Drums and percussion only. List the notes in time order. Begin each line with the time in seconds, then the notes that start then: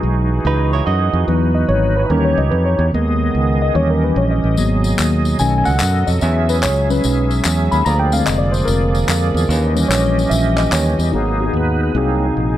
4.57 tambourine
4.84 tambourine
4.99 clap, tambourine
5.25 tambourine
5.39 tambourine
5.65 tambourine
5.80 clap, tambourine
6.07 tambourine
6.21 tambourine
6.49 tambourine
6.63 clap, tambourine
6.90 tambourine
7.04 tambourine
7.31 tambourine
7.45 clap, tambourine
7.72 tambourine
7.86 tambourine
8.12 tambourine
8.27 clap, tambourine
8.54 tambourine
8.68 tambourine
8.95 tambourine
9.09 clap, tambourine
9.37 tambourine
9.50 tambourine
9.77 tambourine
9.92 clap, tambourine
10.19 tambourine
10.31 tambourine
10.58 clap, tambourine
10.72 clap, tambourine
10.99 tambourine